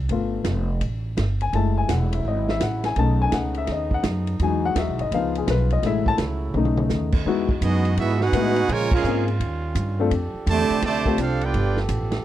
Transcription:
0.09 G1 A3 B3 F4, kick, ride
0.44 F1, kick, snare, hi-hat pedal, ride
0.81 A1, kick, ride
1.17 G1, kick, snare, hi-hat pedal, ride
1.41 G#5, ride
1.53 F#1 C#3 F#3 G#3 A3 E4 A5, kick, ride
1.78 G#5
1.89 E1 F#5, kick, snare, hi-hat pedal, ride
2.13 E5, ride
2.25 G#1 D#5, kick
2.49 E5, snare
2.60 A1 F#5, kick, snare, hi-hat pedal, ride
2.84 G#5, snare, ride
2.96 B1 A3 B3 C#4 D#4 A5, kick, ride
3.22 G#5
3.32 C#2 F#5, kick, snare, hi-hat pedal, ride
3.54 E5, ride
3.67 D#2, kick, snare, ride
3.72 D#5
3.91 F#5, kick
4.03 F#2, kick, snare, hi-hat pedal, ride
4.27 ride
4.39 E2 E3 F#3 G#3 D#4 F#4 G#5, kick, ride
4.65 F#5
4.75 D#2 E5, kick, snare, hi-hat pedal, ride
4.88 B1
4.99 G#1 D#5, ride
5.11 C#2 C#3 F3 B3 D#4 F4 F5, kick, ride
5.35 G#4, ride
5.47 B1 B4, kick, snare, hi-hat pedal, ride
5.70 D#5, ride
5.83 A1 F#3 G#3 A3 E4 E5, kick, snare, ride
6.06 A5, kick
6.18 C#2, kick, snare, hi-hat pedal, ride
6.54 B1 A3 B3 C#4 D#4, mid tom
6.65 mid tom
6.77 mid tom
6.90 D#2, snare, hi-hat pedal
7.12 kick, crash
7.25 E2 E3 G#3 B3 D#4 E4 F#4, kick
7.49 kick
7.61 F#2 G#3 B3 D#4 F#4 G#4 D#5, kick, hi-hat pedal, ride
7.85 ride
7.97 G#2 G#3 B3 E4 F#4 G#4 E5, kick, ride
8.09 snare
8.20 B3 D#4 F#4 G#4 B4 F#5, snare
8.33 A2 G#3 B3 D#4 E4 F#4, kick, hi-hat pedal, ride
8.56 ride
8.68 A#2 C#3 F3 G#3 A#3 F4 A#4 G#5, kick, ride
8.73 C#5
8.91 G#3 C#4 F4 G#4 A#4 F5, kick, crash
9.04 G#2 A#3 C4 C#4 F4 G#4, hi-hat pedal
9.28 ride
9.40 D#2 D#3 G3 C#4, kick, ride
9.75 G2, kick, hi-hat pedal, ride
9.99 A3 C4 D4 F4 A4
10.11 F2 F3 D4 G4 A4, kick, ride
10.34 muted upright bass stroke
10.46 E2 C3 D3 A3 G4 C5 A5, kick, hi-hat pedal, ride
10.51 D5
10.70 muted upright bass stroke, ride
10.82 D2 C3 D3 A3 G4 C5 D5 A5, kick, snare, ride
11.06 A3 C4 D4 F4 G4, kick
11.18 C2 C4 D4 F4 A4 C5 F5, kick, hi-hat pedal, ride
11.41 B3 D4 F4 G4 B4 D5 G5, ride
11.53 G1 B3, kick, ride
11.77 snare
11.89 A1, kick, hi-hat pedal, ride
12.11 snare, ride

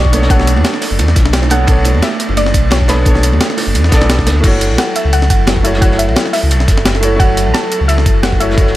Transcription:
Already playing: B1 A3 B3 D4 A4 C#5 D5 C#6
0.04 kick, ride
0.11 B3 D4 A4 C#5, closed hi-hat, ride, high bongo, high conga
0.22 snare
0.27 B1 B3 D4 F#5, kick, closed hi-hat, ride, high bongo
0.31 A4 C#5
0.39 snare
0.47 closed hi-hat, ride
0.56 E2, ride, high bongo, high conga
0.64 snare, closed hi-hat, ride
0.73 snare, ride, high bongo
0.82 snare, open hi-hat, ride
0.91 F#1
0.99 E2, closed hi-hat, ride, high bongo, high conga
1.08 snare
1.16 B1, kick, snare, closed hi-hat, ride, high bongo
1.25 snare
1.33 snare, closed hi-hat, ride
1.42 snare, high bongo
1.49 B3 D4 A4 C#5 F#5, closed hi-hat, ride, high conga
1.60 high bongo
1.64 B1 B3 D4, kick, closed hi-hat, ride
1.69 A4 C#5
1.84 closed hi-hat, ride, high bongo
1.95 E2, high conga
2.02 E5, snare, closed hi-hat, ride, high bongo
2.20 closed hi-hat, ride
2.29 F#1, high bongo
2.37 D5, closed hi-hat, ride, high conga
2.46 snare, high bongo
2.54 B1, kick, closed hi-hat, ride
2.71 C#5, snare, closed hi-hat, ride, high bongo
2.81 kick, ride
2.87 B3 D4 A4 B4 C#5, snare, closed hi-hat, ride, high bongo, high conga
3.03 B1 B3 D4, kick, closed hi-hat, ride
3.07 A4 C#5
3.15 snare, high bongo
3.23 closed hi-hat, ride
3.32 E2, ride, high bongo, high conga
3.40 snare, closed hi-hat, ride
3.49 snare, ride
3.57 snare, open hi-hat, ride, high bongo
3.67 F#1
3.74 E2, closed hi-hat, ride, high bongo, high conga
3.84 snare
3.89 B1 B3 D4, kick, snare, closed hi-hat, ride
3.93 A4 D5
4.01 snare, high bongo
4.09 snare, closed hi-hat, ride
4.19 kick, snare, high bongo
4.27 D2, snare, closed hi-hat, ride, high conga
4.40 F#1 F#3 A3 E4 A4, kick, closed hi-hat, crash, ride
4.45 F#4 C#5
4.61 closed hi-hat, ride
4.70 B1
4.78 F#5, snare, closed hi-hat, ride
4.96 E5, closed hi-hat, ride
5.05 C#2
5.13 F#5, closed hi-hat, ride
5.22 snare
5.30 F#1 F#5, kick, closed hi-hat, ride
5.47 snare, closed hi-hat, ride
5.56 kick, ride
5.63 A3 E4 F#4 C#5 E5, closed hi-hat, ride
5.74 snare
5.78 F#1 A3 E4 F#5, kick, closed hi-hat, ride
5.83 F#4 C#5
5.91 snare
5.99 E5, closed hi-hat, ride
6.09 B1, ride
6.16 snare, closed hi-hat, ride
6.26 snare, ride
6.33 E5, snare, open hi-hat, ride
6.43 C#2
6.51 B1, closed hi-hat, ride
6.60 snare
6.68 F#1, kick, snare, closed hi-hat, ride
6.77 snare
6.85 snare, closed hi-hat, ride
6.95 snare
7.01 A3 E4 F#4 C#5, closed hi-hat, ride
7.16 F#1 A3 E4 F#5, kick, closed hi-hat, ride
7.21 F#4 C#5
7.37 closed hi-hat, ride
7.46 B1
7.54 A5, snare, closed hi-hat, ride
7.72 closed hi-hat, ride
7.81 C#2
7.88 E5, closed hi-hat, ride
7.98 snare
8.06 F#1, kick, closed hi-hat, ride
8.23 F#5, snare, closed hi-hat, ride
8.32 kick, ride
8.39 A3 E4 F#4 C#5 E5, closed hi-hat, ride
8.50 snare
8.54 F#1 A3 E4, kick, closed hi-hat, ride
8.59 F#4 C#5
8.67 snare

